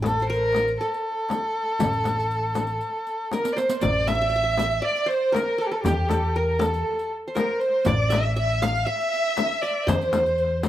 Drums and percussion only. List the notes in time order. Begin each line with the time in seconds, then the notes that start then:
0.03 riq, darbuka tek, frame drum
0.20 riq
0.32 riq
0.53 riq, darbuka tek, frame drum
0.66 riq, darbuka ka
0.81 riq
0.91 riq, darbuka ka
1.29 riq, darbuka tek, frame drum
1.54 darbuka ka
1.79 riq, darbuka dum, frame drum
1.93 riq, darbuka ka
2.04 riq, darbuka tek, frame drum
2.17 riq, darbuka ka
2.31 riq
2.54 riq, darbuka tek, frame drum
2.67 riq, darbuka ka
2.80 riq, darbuka ka
3.07 riq
3.31 riq, darbuka tek, frame drum
3.44 riq, darbuka ka
3.57 riq, darbuka tek
3.69 riq, darbuka ka
3.81 riq, darbuka dum, frame drum
3.95 darbuka ka
4.07 riq, darbuka tek, frame drum
4.34 riq
4.58 riq, darbuka tek, frame drum
4.71 riq
4.96 riq, darbuka ka
5.09 riq, darbuka ka
5.33 riq, darbuka tek, frame drum
5.61 riq
5.84 riq, darbuka dum, frame drum
6.09 riq, darbuka tek, frame drum
6.35 riq
6.60 riq, darbuka tek, frame drum
6.74 riq
6.85 darbuka ka
6.98 riq, darbuka ka
7.10 darbuka ka
7.35 riq, darbuka tek, frame drum
7.61 riq
7.85 riq, darbuka dum, frame drum
7.99 darbuka ka
8.10 riq, darbuka tek, frame drum
8.37 riq
8.62 riq, frame drum
8.75 riq
8.99 riq, darbuka ka
9.12 riq, darbuka ka
9.37 riq, darbuka tek, frame drum
9.64 riq
9.87 riq, darbuka dum, frame drum
10.01 riq
10.13 riq, darbuka tek, frame drum
10.25 riq, darbuka ka
10.38 riq, darbuka ka
10.63 riq, darbuka tek, frame drum